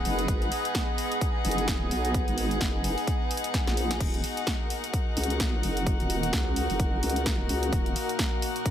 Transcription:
Already playing: B3 D#4 G#4 B4 D#5 F#5
0.05 F#1, open hi-hat
0.19 closed hi-hat
0.28 G#1 G#5, kick, closed hi-hat
0.42 closed hi-hat
0.52 open hi-hat
0.65 closed hi-hat
0.75 kick, snare, closed hi-hat
0.98 open hi-hat
1.12 closed hi-hat
1.21 kick, closed hi-hat
1.45 F#1, open hi-hat
1.51 closed hi-hat
1.58 closed hi-hat
1.68 kick, snare, closed hi-hat
1.91 B1, open hi-hat
2.05 closed hi-hat
2.14 kick, closed hi-hat
2.28 G#1, closed hi-hat
2.38 open hi-hat
2.51 closed hi-hat
2.61 F#1, kick, snare, closed hi-hat
2.84 open hi-hat
2.98 open hi-hat
3.07 kick, closed hi-hat
3.31 open hi-hat
3.37 closed hi-hat
3.44 closed hi-hat
3.54 kick, snare, closed hi-hat
3.67 A#1, snare
3.77 open hi-hat
3.91 snare, closed hi-hat
4.00 D#1 A#3 F#4 F#5, kick, closed hi-hat, crash
4.13 F#4, closed hi-hat
4.24 open hi-hat
4.37 closed hi-hat
4.47 kick, snare, closed hi-hat
4.59 A#4
4.70 open hi-hat
4.84 closed hi-hat
4.93 kick, closed hi-hat
5.17 C#2, open hi-hat
5.24 closed hi-hat
5.30 closed hi-hat
5.40 kick, snare, closed hi-hat
5.63 F#1, open hi-hat
5.77 closed hi-hat
5.87 kick, closed hi-hat
6.00 D#1, closed hi-hat
6.10 open hi-hat
6.23 closed hi-hat
6.33 C#2, kick, snare, closed hi-hat
6.56 open hi-hat
6.70 F#1, open hi-hat
6.80 kick, closed hi-hat
7.03 C#2, open hi-hat
7.10 closed hi-hat
7.16 closed hi-hat
7.26 kick, snare, closed hi-hat
7.49 C#2, open hi-hat
7.63 closed hi-hat
7.73 D#1 C#5, kick, closed hi-hat
7.86 closed hi-hat
7.96 open hi-hat
8.09 closed hi-hat
8.19 kick, snare, closed hi-hat
8.42 open hi-hat
8.56 closed hi-hat
8.66 kick, closed hi-hat

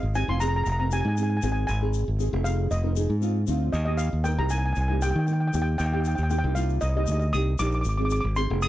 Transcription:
Already playing: F5
0.03 G#1
0.14 C4 D#4 G4 G#5, shaker
0.27 F1 C4 D#4 F4 C6
0.40 C4 D#4 G#4 A#5, shaker
0.48 A#5
0.56 A#5
0.64 F1 A#5, shaker
0.72 A#5
0.79 C4 D#4 A#4 A#5
0.90 C4 D#4 G4 G#5, shaker
1.01 G#2 G#5
1.08 G#5
1.15 C4 D#4 G#4 G#5, shaker
1.23 G#5
1.30 G#5
1.37 G#5
1.42 G#1 C4 D#4 G#4 G#5, shaker
1.52 G#5
1.67 G#1 G#5, shaker
1.81 C4 D#4 G#4
1.94 shaker
2.08 G#1
2.18 C4 D#4 G#4, shaker
2.31 F1 C4 D#4 G#4
2.43 C4 D#4 G#4 F5, shaker
2.71 F1 D#5, shaker
2.82 C4 D#4 A#4
2.95 C4 D#4 G#4, shaker
3.10 G#2
3.20 C4 D#4 F4, shaker
3.46 D2 C4 D#4 F4, shaker
3.73 D#2 D#5, shaker
3.85 A#3 D#4 G4 D#5
3.97 F5, shaker
4.13 D#2
4.24 A#3 D#4 A#4 G5, shaker
4.37 C2 A#3 D#4 G4 A#5
4.50 A#3 D#4 A#4 G#5, shaker
4.58 G#5
4.66 G#5
4.73 C2 G#5, shaker
4.81 G#5
4.88 A#3 D#4 G4 G#5
5.02 A#3 D#4 G4 G5, shaker
5.11 G5
5.15 D#3 G5
5.27 A#3 D#4 A#4 G5, shaker
5.33 G5
5.40 G5
5.48 G5
5.53 D#2 A#3 D#4 G4 G5, shaker
5.62 G5
5.78 D#2 G5, shaker
5.86 G5
5.92 A#3 D#4 G4 G5
6.00 G5
6.05 G5, shaker
6.15 D#2 G5, shaker
6.23 G5
6.29 A#3 D#4 G4 G5, shaker
6.39 G5
6.43 C2 A#3 D#4 G4
6.55 A#3 D#4 F4 F5, shaker
6.69 shaker
6.81 C2 D#5, shaker
6.89 D#5
6.94 A#3 D#4 G4 D#5
7.04 D2 A#3 D#5, shaker
7.08 D#4 G4 D#5
7.19 D#5, shaker
7.33 C2 A#3 D#4 G4 D#6, shaker
7.58 A#1 A#3 D#4 G4 D6, shaker
7.67 D6
7.72 D6, shaker
7.81 G#1 D6, shaker
7.89 D6
7.97 C4 D#4 G#4 D6
8.05 D6
8.10 D6, shaker
8.21 G#1 D6
8.36 C4 D#4 G#4 C6, shaker
8.49 F1 C4 D#4 G#4
8.61 C4 D#4 G#4 D#6, shaker

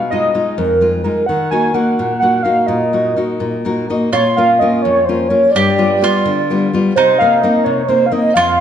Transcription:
Already playing: B2
0.10 G#3 D#4 F4 D#5
0.34 G#3 D#4 F4
0.58 F2 A#4
0.81 G#3 D#4 F4
1.04 G#3 D#4 F4 A#4
1.26 D#3 F#5
1.51 A#3 D#4 F#4 G#5
1.74 A#3 D#4 F#4 F#5
1.99 A#2
2.19 A#3 D#4 F#4 F#5
2.43 A#3 D#4 F#4 F5
2.66 A#2 D#5
2.93 A#3 D#4 F#4
3.16 A#3 D#4 F#4
3.40 A#2
3.65 A#3 D#4 F#4 A#4
3.90 A#3 D#4 F#4 D#5
4.12 A#2 F4 C#5
4.36 A#3 C#4 F4 F5
4.59 A#3 C#4 F4 D#5
4.82 F2 C#5
5.05 A#3 C#4 C5
5.09 F4
5.29 A#3 C#4 F4 C#5
5.51 G2 D5
5.56 G4
5.78 G3 B3 F4
6.01 G3 B3 F4
6.26 D3
6.50 G3 B3 F4
6.73 G3 B3 F4
6.95 C3 D#4 C5
7.19 A#3 C4 D#4 F5
7.38 D#5 F5
7.43 A#3 C4 D#4
7.64 C3 C#5
7.88 A#3 C4 D#4 C5
8.06 F5
8.12 A#3 C4 D#4 D#5
8.34 F2 F4 F5

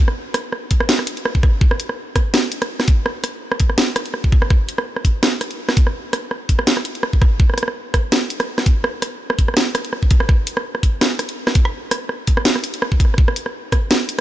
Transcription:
0.08 cross-stick
0.34 cross-stick, closed hi-hat
0.53 cross-stick
0.71 kick, closed hi-hat
0.80 cross-stick
0.89 snare
0.99 cross-stick
1.07 closed hi-hat
1.17 closed hi-hat
1.25 cross-stick
1.35 kick
1.43 kick, cross-stick
1.61 kick
1.71 cross-stick
1.80 closed hi-hat
1.89 cross-stick
2.16 kick, cross-stick, closed hi-hat
2.34 cross-stick, snare
2.52 closed hi-hat
2.62 cross-stick, closed hi-hat
2.80 cross-stick, snare
2.88 kick, closed hi-hat
3.06 cross-stick
3.24 cross-stick, closed hi-hat
3.52 cross-stick
3.60 kick, closed hi-hat
3.70 cross-stick
3.78 snare
3.96 cross-stick, closed hi-hat
4.06 closed hi-hat
4.14 cross-stick
4.24 kick
4.32 kick
4.42 cross-stick
4.50 kick, cross-stick
4.69 closed hi-hat
4.78 cross-stick
4.96 cross-stick
5.05 kick, closed hi-hat
5.23 cross-stick, snare
5.41 cross-stick, closed hi-hat
5.51 closed hi-hat
5.69 cross-stick, snare
5.77 kick, closed hi-hat
5.87 cross-stick
6.13 cross-stick, closed hi-hat
6.31 cross-stick
6.49 kick, closed hi-hat
6.59 cross-stick
6.67 snare
6.77 cross-stick
6.85 closed hi-hat
6.95 closed hi-hat
7.03 cross-stick
7.13 kick
7.22 kick, cross-stick
7.40 kick
7.50 cross-stick
7.54 cross-stick
7.58 cross-stick, closed hi-hat
7.63 cross-stick
7.68 cross-stick
7.94 kick, cross-stick, closed hi-hat
8.12 cross-stick, snare
8.30 closed hi-hat
8.40 cross-stick, closed hi-hat
8.58 cross-stick, snare
8.66 kick, closed hi-hat
8.84 cross-stick
9.02 cross-stick, closed hi-hat
9.30 cross-stick
9.39 kick, closed hi-hat
9.48 cross-stick
9.54 cross-stick, snare
9.60 cross-stick
9.75 cross-stick, closed hi-hat
9.85 closed hi-hat
9.93 cross-stick
10.03 kick
10.11 kick, closed hi-hat
10.20 cross-stick
10.29 kick, cross-stick
10.47 closed hi-hat
10.57 cross-stick
10.75 cross-stick
10.83 kick, closed hi-hat
11.01 cross-stick, snare
11.19 cross-stick, closed hi-hat
11.29 closed hi-hat
11.47 cross-stick, snare
11.55 kick, closed hi-hat
11.65 cross-stick
11.91 cross-stick, closed hi-hat
12.09 cross-stick
12.27 kick, closed hi-hat
12.37 cross-stick
12.45 snare
12.56 cross-stick
12.64 closed hi-hat
12.74 closed hi-hat
12.82 cross-stick
12.92 kick
13.00 kick, cross-stick, closed hi-hat
13.05 cross-stick
13.14 cross-stick
13.18 kick
13.28 cross-stick
13.36 closed hi-hat
13.46 cross-stick
13.72 kick, cross-stick, closed hi-hat
13.91 cross-stick, snare
14.09 closed hi-hat

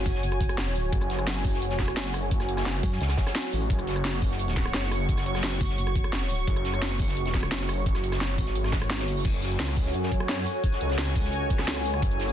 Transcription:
Already playing: F#4 C#5 G#5
0.06 F#1, kick, closed hi-hat, open hi-hat, shaker
0.15 snare, closed hi-hat
0.23 closed hi-hat, shaker
0.32 cross-stick, closed hi-hat
0.41 kick, closed hi-hat
0.49 cross-stick, closed hi-hat
0.58 snare, closed hi-hat, shaker
0.66 snare
0.75 closed hi-hat, open hi-hat, shaker
0.92 F#1, kick, closed hi-hat, shaker
1.01 cross-stick, shaker
1.10 F#1, snare, closed hi-hat
1.19 cross-stick, shaker
1.27 snare, closed hi-hat, shaker
1.36 closed hi-hat
1.44 kick, open hi-hat, shaker
1.53 snare, closed hi-hat
1.62 closed hi-hat, shaker
1.70 F1, snare, closed hi-hat
1.79 kick, snare, closed hi-hat
1.88 cross-stick
1.97 F#1, snare, closed hi-hat, shaker
2.05 snare
2.14 cross-stick, closed hi-hat, open hi-hat
2.31 F#1, kick, closed hi-hat, shaker
2.40 cross-stick, snare, shaker
2.49 closed hi-hat
2.57 cross-stick, snare, shaker
2.66 snare, closed hi-hat, shaker
2.83 F#2, kick, closed hi-hat, open hi-hat, shaker
2.92 snare, closed hi-hat
3.01 C#2, snare, closed hi-hat, shaker
3.09 cross-stick, snare, closed hi-hat
3.17 kick, snare, closed hi-hat
3.27 cross-stick, snare, closed hi-hat
3.35 snare, closed hi-hat, shaker
3.52 A1, closed hi-hat, open hi-hat, shaker
3.70 F#1 C#6, kick, closed hi-hat, shaker
3.79 cross-stick, shaker
3.87 F#1, snare, closed hi-hat
3.96 cross-stick, shaker
4.04 snare, closed hi-hat, shaker
4.13 closed hi-hat
4.22 kick, open hi-hat, shaker
4.31 snare, closed hi-hat
4.39 closed hi-hat, shaker
4.48 snare, closed hi-hat
4.57 kick, snare, closed hi-hat
4.65 cross-stick
4.74 F#1, snare, closed hi-hat, shaker
4.82 snare
4.91 cross-stick, closed hi-hat, open hi-hat
5.09 F#1, kick, closed hi-hat, shaker
5.18 cross-stick, snare, shaker
5.26 closed hi-hat
5.35 cross-stick, snare, shaker
5.44 snare, closed hi-hat, shaker
5.61 F#1, kick, closed hi-hat, open hi-hat, shaker
5.69 snare, closed hi-hat
5.78 closed hi-hat, shaker
5.87 cross-stick, closed hi-hat
5.96 kick, closed hi-hat
6.04 cross-stick, closed hi-hat
6.12 snare, closed hi-hat, shaker
6.22 snare
6.29 closed hi-hat, open hi-hat, shaker
6.48 F#1, kick, closed hi-hat, shaker
6.56 cross-stick, shaker
6.65 F#1, snare, closed hi-hat
6.74 cross-stick, shaker
6.82 snare, closed hi-hat, shaker
6.91 closed hi-hat
6.99 kick, open hi-hat, shaker
7.08 snare, closed hi-hat
7.16 closed hi-hat, shaker
7.26 snare, closed hi-hat
7.34 kick, snare, closed hi-hat
7.43 cross-stick
7.52 F#1, snare, closed hi-hat, shaker
7.61 snare
7.69 cross-stick, closed hi-hat, open hi-hat
7.86 F#1, kick, closed hi-hat, shaker
7.95 cross-stick, snare, shaker
8.04 closed hi-hat, shaker
8.12 cross-stick, snare, shaker
8.21 snare, closed hi-hat, shaker
8.38 G#1, kick, closed hi-hat, open hi-hat, shaker
8.46 snare, closed hi-hat
8.55 closed hi-hat, shaker
8.64 cross-stick, snare, closed hi-hat
8.72 kick, snare, closed hi-hat, shaker
8.81 cross-stick, closed hi-hat
8.90 snare, closed hi-hat, open hi-hat, shaker
8.98 G1, snare, closed hi-hat
9.08 closed hi-hat, open hi-hat, shaker
9.17 open hi-hat
9.25 F#1 F#4 A4 C#5 G#5, kick, closed hi-hat, crash, shaker
9.33 F#4, shaker
9.42 snare, closed hi-hat, shaker
9.51 C#5, shaker
9.59 C#2, snare, closed hi-hat, shaker
9.67 cross-stick, closed hi-hat
9.77 kick, open hi-hat, shaker
9.86 snare
9.94 F#2, closed hi-hat, shaker
10.03 G#5, snare
10.12 kick, closed hi-hat
10.20 cross-stick
10.29 snare, closed hi-hat, shaker
10.38 cross-stick, snare
10.46 closed hi-hat, open hi-hat, shaker
10.64 kick, closed hi-hat, shaker
10.72 snare, shaker
10.81 C#2, closed hi-hat, shaker
10.90 snare, shaker
10.98 snare, closed hi-hat, shaker
11.07 cross-stick
11.16 kick, closed hi-hat, open hi-hat, shaker
11.24 snare
11.33 closed hi-hat, shaker
11.50 kick, closed hi-hat, shaker
11.58 cross-stick, snare, closed hi-hat
11.67 C#2, snare, closed hi-hat, shaker
11.76 cross-stick, snare
11.85 closed hi-hat, open hi-hat, shaker
11.94 cross-stick
12.02 F#1, kick, closed hi-hat, shaker
12.11 shaker
12.20 snare, closed hi-hat, shaker
12.28 shaker

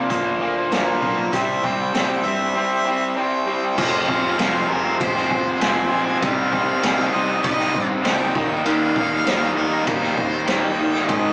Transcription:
Already playing: A#3 D4 F4 D5
0.09 D2 A#2 F3 A#3 D4 F4, kick, closed hi-hat
0.40 D2 A#2 F3 A#3 D4 F4
0.70 D2 A#2 D3 F3 A#3 D4 F4 A#4, snare, closed hi-hat
1.00 B1 A#2 F3 A#3 D4 F4, kick
1.32 C2 C3 G3 C4 E4 G4 E5, kick, closed hi-hat
1.62 C2 C3 G3 C4 E4 G4 G5, kick
1.94 C2 C3 G3 C4 E4 G4, snare, closed hi-hat
2.24 G2 C3 G3 C4 E4 E5
2.54 C3 G3 C4 E4 G4
2.84 C3 G3 C4 E4 G4
2.88 C4
3.15 C3 G3 C4 E4 G4 G5
3.46 C3 G3 C4 E4 G4
3.75 F1 F2 C3 F3 G#3 C4 F4 G#4 F5, kick, crash
3.79 G#4
4.06 F1 F2 C3 F3 G#3 C4 F4 G#4, kick
4.10 F3
4.23 F3 G#3 C4
4.36 F1 F2 C3 F3 G#3 C4 F4, snare, ride bell
4.41 G#4
4.53 F3 G#3 C4, snare
4.68 F1 F2 C3 F3 G#3 C4 F4 G#4 A#4
4.83 F3 G#3 C4
5.00 F1 F2 C3 F3 G#3 F4 G#4 C5, kick, ride bell
5.13 F3 G#3 C4, snare
5.29 F1 F2 C3 F3 G#3 C4 F4 G#4, muted overdriven electric guitar stroke, kick
5.44 F3 G#3 C4
5.59 F1 F2 C3 F3 G#3 C4 F4 G#5, snare, ride bell
5.63 G#4
5.74 F3 G#3 C4
5.90 A#1 F2 C3 F3 G#3 C4 F4 G#4
5.94 F3
6.03 G#3 C4
6.07 F3
6.19 C2 C3 D#3 G3 C4 D#4 G4 D#5 F5, kick, ride bell
6.23 C4
6.50 C3 G3 C4 D#4 G4, kick
6.54 C4 D#4
6.67 G3 C4 D#4
6.80 C2 C3 D#3 G3 C4 D#4, ride bell
6.84 G4, snare
6.96 G3 C4 D#4, snare
7.11 C2 C3 G3 C4 D#4 G4 D#5
7.15 C4
7.27 G3 C4 D#4
7.42 C2 C3 D#3 G3 C4 D#4 G4 D#5, kick, ride bell
7.57 G3 C4 D#4, snare
7.73 G2 C3 G3 C4 D#4 G4, muted overdriven electric guitar stroke, kick
7.77 D#4
7.89 G3 C4 D#4
8.03 C#2 C3 D#3 G3 C4 D#4 G5, snare, ride bell
8.07 G4
8.18 G3 C4 D#4
8.34 D#2 D#3 G3 A#3 B3 D#4 E4 G4 G#4 E5, kick
8.49 G3 A#3 D#4
8.56 A#3 D#4 G4 D#5
8.63 D#2 D#3 G3 A#3 D#4 G4 F5, ride bell
8.94 D#2 D#3 G3 A#3 D#4 G4, kick
9.10 G3 A#3 D#4
9.24 D#2 D#3 G3 A#3 D#4 G4, snare, ride bell
9.39 G3 A#3 D#4, snare
9.54 D#2 D#3 G3 A#3 D#4 G4 A#4
9.58 A#3 D#4
9.70 G3 A#3 D#4
9.86 D#2 D#3 A#3 D#4 G4 C5, kick, ride bell
10.00 G3 A#3 D#4, snare
10.16 D#2 D#3 G3 A#3 D#4 G4, muted overdriven electric guitar stroke, kick
10.20 A#3 D#4
10.32 G3 A#3 D#4
10.46 D#2 D#3 G3 A#3 D#4 G5, snare, ride bell
10.51 D#4 G4
10.60 A#3 D#4
10.65 G3
10.75 G1 D#3 G3 A#3 D#4 G4
10.80 A#3 D#4
10.91 G3 A#3 D#4, snare
11.02 C5
11.06 G#1 G#2 D#3 G#3 C4 D#4 G#4 D#5, kick, ride bell

